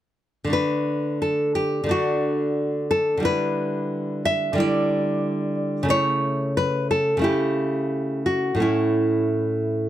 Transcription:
0.44 1.82 D3 soft
0.44 1.85 A3 soft
0.50 1.87 D4 soft
0.50 1.21 B4 medium
1.22 1.55 A4 medium
1.55 1.89 G4 medium
1.84 3.16 D3 medium
1.84 3.19 A3 soft
1.89 3.20 D4 soft
1.89 2.88 F#4 medium
2.91 3.23 A4 medium
3.17 4.52 D3 medium
3.17 4.53 G3 medium
3.23 4.54 E4 soft
3.23 4.22 B4 medium
4.25 4.58 E5 medium
4.53 5.84 D3 medium
4.53 5.85 G3 soft
4.58 5.87 E4 soft
4.58 5.54 D5 medium
5.83 7.14 C#3 medium
5.83 7.15 A3 soft
5.89 7.17 E4 medium
5.89 6.54 C#5 medium
6.57 6.89 B4 medium
6.91 7.21 A4 medium
7.17 8.54 C#3 medium
7.17 8.55 A3 soft
7.22 8.58 E4 soft
7.22 8.22 G4 medium
8.26 8.61 F#4 medium
8.55 9.89 A2 soft
8.55 9.89 A3 soft
8.60 9.89 C#4 soft
8.60 9.89 E4 medium

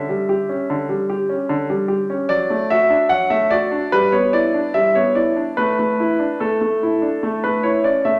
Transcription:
0.00 0.77 E5 medium
0.09 0.31 G3 soft
0.29 0.51 G4 soft
0.49 0.71 C#4 soft
0.70 0.90 D3 medium
0.89 1.11 G3 soft
1.10 1.32 G4 soft
1.29 1.52 C#4 soft
1.49 1.70 D3 medium
1.70 1.92 G3 soft
1.88 2.11 G4 soft
2.10 2.31 C#4 soft
2.29 2.51 F#3 medium
2.29 2.71 D5 medium
2.50 2.73 A3 soft
2.70 2.94 F#4 soft
2.70 3.08 E5 medium
2.90 3.13 D4 soft
3.09 3.31 F#3 soft
3.09 3.32 F#5 medium
3.30 3.53 A3 soft
3.30 3.52 E5 medium
3.51 3.74 F#4 soft
3.51 3.89 D5 medium
3.71 3.93 D4 soft
3.92 4.14 G3 medium
3.92 4.14 B4 medium
4.12 4.35 B3 soft
4.12 4.34 C#5 medium
4.33 4.56 E4 soft
4.33 4.75 D5 medium
4.54 4.77 D4 soft
4.74 4.96 G3 soft
4.74 4.96 E5 medium
4.95 5.18 B3 soft
4.95 5.17 C#5 medium
5.15 5.38 E4 soft
5.15 5.58 D5 medium
5.36 5.58 D4 soft
5.57 5.78 A3 medium
5.57 6.41 B4 medium
5.79 6.01 A3 soft
6.00 6.22 E4 soft
6.19 6.42 D4 soft
6.40 6.60 A3 soft
6.40 7.41 A4 soft
6.61 6.84 A3 soft
6.83 7.05 E4 soft
7.02 7.24 D4 soft
7.23 7.43 A3 soft
7.44 7.67 A3 soft
7.44 7.65 B4 medium
7.63 7.87 E4 soft
7.63 7.86 C#5 medium
7.84 8.07 C#4 soft
7.84 8.06 D5 medium
8.05 8.20 A3 soft
8.05 8.20 E5 medium

